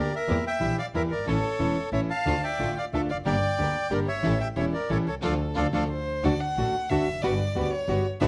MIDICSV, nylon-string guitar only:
0, 0, Header, 1, 2, 480
1, 0, Start_track
1, 0, Key_signature, -1, "minor"
1, 0, Tempo, 330215
1, 429, Time_signature, 3, 2, 24, 8
1, 12031, End_track
2, 0, Start_track
2, 0, Title_t, "Nylon-string guitar"
2, 0, Program_c, 0, 24
2, 0, Note_on_c, 0, 50, 65
2, 0, Note_on_c, 0, 58, 66
2, 0, Note_on_c, 0, 62, 70
2, 0, Note_on_c, 0, 67, 72
2, 180, Note_off_c, 0, 50, 0
2, 186, Note_off_c, 0, 62, 0
2, 188, Note_off_c, 0, 58, 0
2, 188, Note_off_c, 0, 67, 0
2, 403, Note_on_c, 0, 52, 79
2, 412, Note_on_c, 0, 55, 77
2, 426, Note_on_c, 0, 64, 98
2, 545, Note_off_c, 0, 52, 0
2, 549, Note_off_c, 0, 55, 0
2, 556, Note_off_c, 0, 64, 0
2, 873, Note_on_c, 0, 52, 59
2, 887, Note_on_c, 0, 55, 66
2, 887, Note_on_c, 0, 64, 71
2, 1129, Note_off_c, 0, 52, 0
2, 1135, Note_off_c, 0, 55, 0
2, 1136, Note_off_c, 0, 64, 0
2, 1374, Note_on_c, 0, 52, 71
2, 1378, Note_on_c, 0, 55, 69
2, 1386, Note_on_c, 0, 64, 71
2, 1616, Note_off_c, 0, 52, 0
2, 1618, Note_off_c, 0, 55, 0
2, 1622, Note_off_c, 0, 64, 0
2, 1851, Note_on_c, 0, 52, 74
2, 1865, Note_on_c, 0, 57, 80
2, 1867, Note_on_c, 0, 61, 85
2, 1870, Note_on_c, 0, 64, 85
2, 1979, Note_off_c, 0, 52, 0
2, 1986, Note_off_c, 0, 57, 0
2, 1987, Note_off_c, 0, 61, 0
2, 1989, Note_off_c, 0, 64, 0
2, 2317, Note_on_c, 0, 52, 58
2, 2319, Note_on_c, 0, 57, 66
2, 2330, Note_on_c, 0, 61, 67
2, 2331, Note_on_c, 0, 64, 65
2, 2569, Note_off_c, 0, 52, 0
2, 2570, Note_off_c, 0, 57, 0
2, 2575, Note_off_c, 0, 61, 0
2, 2575, Note_off_c, 0, 64, 0
2, 2789, Note_on_c, 0, 57, 58
2, 2797, Note_on_c, 0, 52, 65
2, 2803, Note_on_c, 0, 64, 68
2, 2804, Note_on_c, 0, 61, 66
2, 3049, Note_off_c, 0, 57, 0
2, 3053, Note_off_c, 0, 52, 0
2, 3056, Note_off_c, 0, 61, 0
2, 3056, Note_off_c, 0, 64, 0
2, 3282, Note_on_c, 0, 50, 69
2, 3286, Note_on_c, 0, 57, 69
2, 3302, Note_on_c, 0, 62, 80
2, 3304, Note_on_c, 0, 65, 79
2, 3423, Note_off_c, 0, 50, 0
2, 3425, Note_off_c, 0, 57, 0
2, 3433, Note_off_c, 0, 62, 0
2, 3434, Note_off_c, 0, 65, 0
2, 3766, Note_on_c, 0, 50, 57
2, 3776, Note_on_c, 0, 57, 59
2, 3778, Note_on_c, 0, 62, 65
2, 3784, Note_on_c, 0, 65, 62
2, 4021, Note_off_c, 0, 50, 0
2, 4026, Note_off_c, 0, 57, 0
2, 4027, Note_off_c, 0, 62, 0
2, 4030, Note_off_c, 0, 65, 0
2, 4266, Note_on_c, 0, 50, 64
2, 4266, Note_on_c, 0, 57, 60
2, 4276, Note_on_c, 0, 62, 70
2, 4279, Note_on_c, 0, 65, 68
2, 4507, Note_off_c, 0, 50, 0
2, 4507, Note_off_c, 0, 57, 0
2, 4512, Note_off_c, 0, 62, 0
2, 4514, Note_off_c, 0, 65, 0
2, 4733, Note_on_c, 0, 50, 74
2, 4738, Note_on_c, 0, 55, 79
2, 4739, Note_on_c, 0, 58, 86
2, 4744, Note_on_c, 0, 67, 86
2, 4745, Note_on_c, 0, 62, 83
2, 4864, Note_off_c, 0, 50, 0
2, 4866, Note_off_c, 0, 55, 0
2, 4867, Note_off_c, 0, 58, 0
2, 4869, Note_off_c, 0, 67, 0
2, 4870, Note_off_c, 0, 62, 0
2, 5210, Note_on_c, 0, 50, 64
2, 5217, Note_on_c, 0, 55, 58
2, 5217, Note_on_c, 0, 62, 65
2, 5218, Note_on_c, 0, 58, 62
2, 5222, Note_on_c, 0, 67, 68
2, 5454, Note_off_c, 0, 50, 0
2, 5458, Note_off_c, 0, 55, 0
2, 5458, Note_off_c, 0, 58, 0
2, 5458, Note_off_c, 0, 62, 0
2, 5460, Note_off_c, 0, 67, 0
2, 5671, Note_on_c, 0, 50, 62
2, 5678, Note_on_c, 0, 62, 71
2, 5680, Note_on_c, 0, 55, 73
2, 5684, Note_on_c, 0, 58, 66
2, 5691, Note_on_c, 0, 67, 75
2, 5922, Note_off_c, 0, 50, 0
2, 5925, Note_off_c, 0, 62, 0
2, 5926, Note_off_c, 0, 55, 0
2, 5929, Note_off_c, 0, 58, 0
2, 5932, Note_off_c, 0, 67, 0
2, 6146, Note_on_c, 0, 52, 83
2, 6153, Note_on_c, 0, 61, 82
2, 6155, Note_on_c, 0, 55, 82
2, 6165, Note_on_c, 0, 64, 89
2, 6285, Note_off_c, 0, 52, 0
2, 6288, Note_off_c, 0, 61, 0
2, 6289, Note_off_c, 0, 55, 0
2, 6294, Note_off_c, 0, 64, 0
2, 6631, Note_on_c, 0, 52, 65
2, 6634, Note_on_c, 0, 55, 73
2, 6641, Note_on_c, 0, 61, 73
2, 6645, Note_on_c, 0, 64, 71
2, 6882, Note_off_c, 0, 52, 0
2, 6884, Note_off_c, 0, 55, 0
2, 6887, Note_off_c, 0, 61, 0
2, 6889, Note_off_c, 0, 64, 0
2, 7122, Note_on_c, 0, 52, 71
2, 7131, Note_on_c, 0, 55, 76
2, 7139, Note_on_c, 0, 61, 70
2, 7139, Note_on_c, 0, 64, 74
2, 7369, Note_off_c, 0, 52, 0
2, 7373, Note_off_c, 0, 55, 0
2, 7377, Note_off_c, 0, 61, 0
2, 7377, Note_off_c, 0, 64, 0
2, 7600, Note_on_c, 0, 57, 91
2, 7603, Note_on_c, 0, 53, 88
2, 7608, Note_on_c, 0, 62, 82
2, 7755, Note_off_c, 0, 57, 0
2, 7758, Note_off_c, 0, 53, 0
2, 7758, Note_off_c, 0, 62, 0
2, 8083, Note_on_c, 0, 53, 84
2, 8090, Note_on_c, 0, 57, 85
2, 8095, Note_on_c, 0, 62, 88
2, 8240, Note_off_c, 0, 62, 0
2, 8241, Note_off_c, 0, 53, 0
2, 8242, Note_off_c, 0, 57, 0
2, 8327, Note_on_c, 0, 53, 85
2, 8335, Note_on_c, 0, 57, 89
2, 8336, Note_on_c, 0, 62, 85
2, 8486, Note_off_c, 0, 53, 0
2, 8486, Note_off_c, 0, 62, 0
2, 8488, Note_off_c, 0, 57, 0
2, 9075, Note_on_c, 0, 50, 81
2, 9080, Note_on_c, 0, 57, 85
2, 9090, Note_on_c, 0, 62, 85
2, 9092, Note_on_c, 0, 66, 94
2, 9203, Note_off_c, 0, 50, 0
2, 9205, Note_off_c, 0, 57, 0
2, 9210, Note_off_c, 0, 62, 0
2, 9211, Note_off_c, 0, 66, 0
2, 9550, Note_on_c, 0, 50, 62
2, 9562, Note_on_c, 0, 62, 68
2, 9565, Note_on_c, 0, 57, 67
2, 9572, Note_on_c, 0, 66, 68
2, 9798, Note_off_c, 0, 50, 0
2, 9804, Note_off_c, 0, 62, 0
2, 9805, Note_off_c, 0, 57, 0
2, 9809, Note_off_c, 0, 66, 0
2, 10037, Note_on_c, 0, 50, 73
2, 10048, Note_on_c, 0, 57, 71
2, 10051, Note_on_c, 0, 66, 80
2, 10052, Note_on_c, 0, 62, 74
2, 10283, Note_off_c, 0, 50, 0
2, 10288, Note_off_c, 0, 57, 0
2, 10290, Note_off_c, 0, 62, 0
2, 10290, Note_off_c, 0, 66, 0
2, 10515, Note_on_c, 0, 55, 85
2, 10519, Note_on_c, 0, 59, 92
2, 10525, Note_on_c, 0, 66, 97
2, 10645, Note_off_c, 0, 55, 0
2, 10647, Note_off_c, 0, 59, 0
2, 10650, Note_off_c, 0, 66, 0
2, 10978, Note_on_c, 0, 55, 70
2, 10989, Note_on_c, 0, 59, 67
2, 10996, Note_on_c, 0, 66, 68
2, 11230, Note_off_c, 0, 55, 0
2, 11235, Note_off_c, 0, 59, 0
2, 11239, Note_off_c, 0, 66, 0
2, 11453, Note_on_c, 0, 55, 72
2, 11453, Note_on_c, 0, 59, 79
2, 11471, Note_on_c, 0, 66, 87
2, 11705, Note_off_c, 0, 55, 0
2, 11705, Note_off_c, 0, 59, 0
2, 11715, Note_off_c, 0, 66, 0
2, 11932, Note_on_c, 0, 47, 92
2, 11942, Note_on_c, 0, 50, 94
2, 11943, Note_on_c, 0, 62, 101
2, 11944, Note_on_c, 0, 59, 97
2, 11949, Note_on_c, 0, 66, 102
2, 12031, Note_off_c, 0, 47, 0
2, 12031, Note_off_c, 0, 50, 0
2, 12031, Note_off_c, 0, 59, 0
2, 12031, Note_off_c, 0, 62, 0
2, 12031, Note_off_c, 0, 66, 0
2, 12031, End_track
0, 0, End_of_file